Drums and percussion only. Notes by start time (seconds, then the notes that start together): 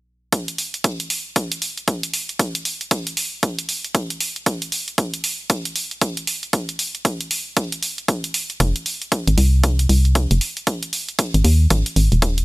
0.33 kick, closed hi-hat
0.48 closed hi-hat
0.58 open hi-hat
0.74 closed hi-hat
0.84 kick, closed hi-hat
1.00 closed hi-hat
1.10 open hi-hat
1.36 kick, closed hi-hat
1.52 closed hi-hat
1.62 open hi-hat
1.78 closed hi-hat
1.88 kick, closed hi-hat
2.03 closed hi-hat
2.14 open hi-hat
2.29 closed hi-hat
2.39 kick, closed hi-hat
2.55 closed hi-hat
2.65 open hi-hat
2.81 closed hi-hat
2.91 kick, closed hi-hat
3.07 closed hi-hat
3.17 open hi-hat
3.43 kick, closed hi-hat
3.59 closed hi-hat
3.69 open hi-hat
3.85 closed hi-hat
3.95 kick, closed hi-hat
4.10 closed hi-hat
4.20 open hi-hat
4.36 closed hi-hat
4.46 kick, closed hi-hat
4.62 closed hi-hat
4.72 open hi-hat
4.88 closed hi-hat
4.98 kick, closed hi-hat
5.14 closed hi-hat
5.24 open hi-hat
5.50 kick, closed hi-hat
5.65 closed hi-hat
5.76 open hi-hat
5.91 closed hi-hat
6.01 kick, closed hi-hat
6.17 closed hi-hat
6.27 open hi-hat
6.43 closed hi-hat
6.53 kick, closed hi-hat
6.69 closed hi-hat
6.79 open hi-hat
6.95 closed hi-hat
7.05 kick, closed hi-hat
7.21 closed hi-hat
7.31 open hi-hat
7.57 kick, closed hi-hat
7.72 closed hi-hat
7.83 open hi-hat
7.98 closed hi-hat
8.08 kick, closed hi-hat
8.24 closed hi-hat
8.34 open hi-hat
8.50 closed hi-hat
8.60 kick, closed hi-hat
8.76 closed hi-hat
8.86 open hi-hat
9.02 closed hi-hat
9.12 kick, closed hi-hat
9.27 closed hi-hat
9.38 open hi-hat
9.64 kick, closed hi-hat
9.79 closed hi-hat
9.89 open hi-hat
10.05 closed hi-hat
10.15 kick, closed hi-hat
10.31 closed hi-hat
10.41 open hi-hat
10.57 closed hi-hat
10.67 kick, closed hi-hat
10.83 closed hi-hat
10.93 open hi-hat
11.09 closed hi-hat
11.19 kick, closed hi-hat
11.34 closed hi-hat
11.45 open hi-hat
11.70 kick, closed hi-hat
11.86 closed hi-hat
11.96 open hi-hat
12.12 closed hi-hat
12.22 kick, closed hi-hat
12.38 closed hi-hat